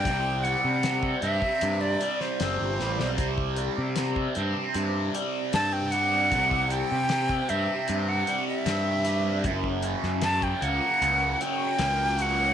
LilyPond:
<<
  \new Staff \with { instrumentName = "Flute" } { \time 4/4 \key c \lydian \tempo 4 = 77 g''8 fis''4 e''8. d''8 c''4~ c''16~ | c''16 r2 r8. a''16 g''16 fis''8~ | fis''8 g''4 e''8. fis''8 e''4~ e''16~ | e''16 r8. a''16 g''16 fis''4 g''4 fis''8 | }
  \new Staff \with { instrumentName = "Overdriven electric guitar" } { \clef bass \time 4/4 \key c \lydian <c g c'>8 g8 c8 c'8 c8 g8 c'8 g8 | c8 g8 c8 c'8 c8 g8 c'8 g8 | c8 g8 c8 c'8 c8 g8 c'8 g8 | fis,8 cis8 cis8 ais8 cis8 fis8 ais8 fis8 | }
  \new Staff \with { instrumentName = "Picked electric bass" } { \clef bass \time 4/4 \key c \lydian c,8. c8. g,16 r16 g,8 r8 fis,,16 g,,16 a,,16 b,,16 | c,8. c8. g,16 r16 g,8 r8 g,4 | c,8. c8. g,16 r16 g,8 r8 g,4 | fis,,8. fis,8. cis,16 r16 cis,8 r8 cis,4 | }
  \new DrumStaff \with { instrumentName = "Drums" } \drummode { \time 4/4 <hh bd>8 hh8 <hh sn>16 bd16 hh16 bd16 hh8 hh16 sn16 <hh sn>8 sn16 sn16 | <hh bd>16 bd16 hh8 <hh sn>16 bd16 hh8 hh8 hh8 <hh sn>8 hh8 | <hh bd>16 bd16 hh8 <hh sn>16 bd16 hh8 hh8 hh8 <hh sn>8 <hh sn>8 | <hh bd>16 bd16 hh16 sn16 <hh sn>16 bd16 hh8 hh8 hh8 <hh sn>8 hh8 | }
>>